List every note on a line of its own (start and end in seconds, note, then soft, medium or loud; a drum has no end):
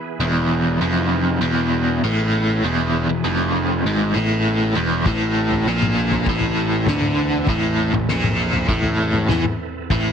0.00 5.13 E3 medium
0.00 5.03 B3 medium
0.00 10.12 E4 medium
0.00 5.02 G#4 medium
0.00 10.12 B4 medium
0.20 0.77 E1 loud
0.20 0.80 E2 loud
0.81 1.38 F1 medium
0.81 1.41 F2 medium
1.41 1.98 E1 medium
1.41 2.01 E2 loud
2.03 2.60 A1 medium
2.03 2.63 A2 loud
2.63 3.06 E1 medium
2.63 3.08 E2 loud
3.08 3.23 E1 medium
3.08 3.24 E2 medium
3.24 3.82 F1 medium
3.24 3.84 F2 medium
3.85 4.13 G#1 medium
3.85 4.15 G#2 medium
4.14 4.72 A1 loud
4.14 4.75 A2 loud
4.75 5.04 E1 medium
4.75 5.05 E2 loud
5.06 5.63 A1 medium
5.06 10.12 E2 medium
5.06 5.67 A2 medium
5.06 10.12 C4 medium
5.06 10.12 A4 medium
5.06 kick loud
5.06 floor tom medium
5.51 floor tom medium
5.66 6.23 A#1 medium
5.66 6.27 A#2 medium
5.82 mid tom medium
6.11 floor tom medium
6.26 6.84 A1 medium
6.26 6.88 A2 loud
6.26 kick loud
6.41 floor tom medium
6.86 7.44 D2 medium
6.86 7.48 D3 loud
6.86 snare medium
6.86 floor tom medium
6.86 mid tom medium
7.02 mid tom medium
7.47 7.91 A1 medium
7.47 7.93 A2 medium
7.47 kick loud
7.47 floor tom medium
7.93 8.08 A1 medium
7.93 8.09 A2 medium
7.93 floor tom medium
8.09 8.66 A#1 medium
8.09 8.68 A#2 medium
8.09 snare medium
8.24 mid tom medium
8.53 floor tom medium
8.68 9.26 A1 medium
8.68 9.29 A2 loud
8.68 kick loud
8.83 floor tom medium
9.14 mid tom medium
9.29 9.44 E2 medium
9.29 9.44 E3 loud
9.29 snare medium
9.29 floor tom medium
9.29 mid tom medium
9.44 mid tom medium
9.90 10.12 A1 loud
9.90 10.12 A2 loud
9.90 kick loud
9.90 floor tom medium